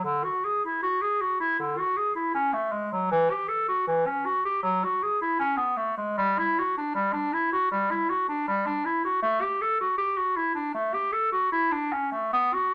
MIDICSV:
0, 0, Header, 1, 2, 480
1, 0, Start_track
1, 0, Tempo, 768246
1, 30, Time_signature, 4, 2, 24, 8
1, 4348, Tempo, 756620
1, 6268, Tempo, 781250
1, 7962, End_track
2, 0, Start_track
2, 0, Title_t, "Clarinet"
2, 0, Program_c, 0, 71
2, 25, Note_on_c, 0, 50, 74
2, 152, Note_on_c, 0, 66, 57
2, 162, Note_off_c, 0, 50, 0
2, 280, Note_on_c, 0, 68, 63
2, 289, Note_off_c, 0, 66, 0
2, 400, Note_off_c, 0, 68, 0
2, 405, Note_on_c, 0, 64, 55
2, 513, Note_off_c, 0, 64, 0
2, 517, Note_on_c, 0, 66, 70
2, 637, Note_on_c, 0, 68, 62
2, 646, Note_off_c, 0, 66, 0
2, 757, Note_on_c, 0, 66, 59
2, 766, Note_off_c, 0, 68, 0
2, 872, Note_off_c, 0, 66, 0
2, 876, Note_on_c, 0, 64, 60
2, 991, Note_off_c, 0, 64, 0
2, 996, Note_on_c, 0, 50, 60
2, 1116, Note_on_c, 0, 66, 59
2, 1125, Note_off_c, 0, 50, 0
2, 1232, Note_on_c, 0, 68, 60
2, 1241, Note_off_c, 0, 66, 0
2, 1341, Note_off_c, 0, 68, 0
2, 1345, Note_on_c, 0, 64, 57
2, 1461, Note_off_c, 0, 64, 0
2, 1466, Note_on_c, 0, 61, 77
2, 1582, Note_on_c, 0, 57, 65
2, 1591, Note_off_c, 0, 61, 0
2, 1701, Note_on_c, 0, 56, 60
2, 1710, Note_off_c, 0, 57, 0
2, 1819, Note_off_c, 0, 56, 0
2, 1826, Note_on_c, 0, 54, 60
2, 1939, Note_off_c, 0, 54, 0
2, 1945, Note_on_c, 0, 52, 85
2, 2068, Note_on_c, 0, 67, 63
2, 2078, Note_off_c, 0, 52, 0
2, 2178, Note_on_c, 0, 69, 68
2, 2187, Note_off_c, 0, 67, 0
2, 2297, Note_off_c, 0, 69, 0
2, 2302, Note_on_c, 0, 66, 67
2, 2417, Note_off_c, 0, 66, 0
2, 2420, Note_on_c, 0, 52, 72
2, 2542, Note_on_c, 0, 61, 67
2, 2551, Note_off_c, 0, 52, 0
2, 2659, Note_on_c, 0, 66, 61
2, 2668, Note_off_c, 0, 61, 0
2, 2777, Note_off_c, 0, 66, 0
2, 2780, Note_on_c, 0, 67, 65
2, 2888, Note_off_c, 0, 67, 0
2, 2892, Note_on_c, 0, 54, 81
2, 3025, Note_on_c, 0, 66, 70
2, 3035, Note_off_c, 0, 54, 0
2, 3143, Note_on_c, 0, 68, 64
2, 3152, Note_off_c, 0, 66, 0
2, 3253, Note_off_c, 0, 68, 0
2, 3256, Note_on_c, 0, 64, 66
2, 3365, Note_off_c, 0, 64, 0
2, 3369, Note_on_c, 0, 61, 78
2, 3480, Note_on_c, 0, 59, 69
2, 3490, Note_off_c, 0, 61, 0
2, 3604, Note_on_c, 0, 57, 69
2, 3613, Note_off_c, 0, 59, 0
2, 3730, Note_off_c, 0, 57, 0
2, 3734, Note_on_c, 0, 56, 65
2, 3857, Note_off_c, 0, 56, 0
2, 3860, Note_on_c, 0, 55, 87
2, 3991, Note_on_c, 0, 64, 76
2, 4000, Note_off_c, 0, 55, 0
2, 4117, Note_on_c, 0, 66, 66
2, 4126, Note_off_c, 0, 64, 0
2, 4229, Note_off_c, 0, 66, 0
2, 4232, Note_on_c, 0, 62, 65
2, 4337, Note_off_c, 0, 62, 0
2, 4341, Note_on_c, 0, 55, 71
2, 4455, Note_on_c, 0, 62, 67
2, 4465, Note_off_c, 0, 55, 0
2, 4585, Note_on_c, 0, 64, 68
2, 4595, Note_off_c, 0, 62, 0
2, 4702, Note_off_c, 0, 64, 0
2, 4706, Note_on_c, 0, 66, 71
2, 4824, Note_off_c, 0, 66, 0
2, 4827, Note_on_c, 0, 55, 73
2, 4952, Note_on_c, 0, 64, 65
2, 4962, Note_off_c, 0, 55, 0
2, 5069, Note_on_c, 0, 66, 66
2, 5079, Note_off_c, 0, 64, 0
2, 5186, Note_off_c, 0, 66, 0
2, 5190, Note_on_c, 0, 62, 64
2, 5307, Note_off_c, 0, 62, 0
2, 5311, Note_on_c, 0, 55, 72
2, 5429, Note_on_c, 0, 62, 68
2, 5438, Note_off_c, 0, 55, 0
2, 5550, Note_on_c, 0, 64, 69
2, 5560, Note_off_c, 0, 62, 0
2, 5668, Note_off_c, 0, 64, 0
2, 5672, Note_on_c, 0, 66, 67
2, 5782, Note_off_c, 0, 66, 0
2, 5786, Note_on_c, 0, 57, 92
2, 5908, Note_on_c, 0, 67, 78
2, 5918, Note_off_c, 0, 57, 0
2, 6033, Note_on_c, 0, 69, 69
2, 6043, Note_off_c, 0, 67, 0
2, 6150, Note_off_c, 0, 69, 0
2, 6155, Note_on_c, 0, 66, 67
2, 6262, Note_off_c, 0, 66, 0
2, 6266, Note_on_c, 0, 67, 76
2, 6385, Note_on_c, 0, 66, 67
2, 6394, Note_off_c, 0, 67, 0
2, 6500, Note_on_c, 0, 64, 69
2, 6510, Note_off_c, 0, 66, 0
2, 6611, Note_off_c, 0, 64, 0
2, 6615, Note_on_c, 0, 62, 65
2, 6731, Note_off_c, 0, 62, 0
2, 6734, Note_on_c, 0, 57, 70
2, 6854, Note_on_c, 0, 67, 63
2, 6863, Note_off_c, 0, 57, 0
2, 6967, Note_on_c, 0, 69, 63
2, 6976, Note_off_c, 0, 67, 0
2, 7083, Note_off_c, 0, 69, 0
2, 7087, Note_on_c, 0, 66, 67
2, 7207, Note_off_c, 0, 66, 0
2, 7212, Note_on_c, 0, 64, 77
2, 7331, Note_on_c, 0, 62, 69
2, 7340, Note_off_c, 0, 64, 0
2, 7460, Note_on_c, 0, 61, 71
2, 7469, Note_off_c, 0, 62, 0
2, 7576, Note_off_c, 0, 61, 0
2, 7579, Note_on_c, 0, 57, 64
2, 7700, Note_off_c, 0, 57, 0
2, 7708, Note_on_c, 0, 59, 88
2, 7838, Note_on_c, 0, 66, 72
2, 7847, Note_off_c, 0, 59, 0
2, 7962, Note_off_c, 0, 66, 0
2, 7962, End_track
0, 0, End_of_file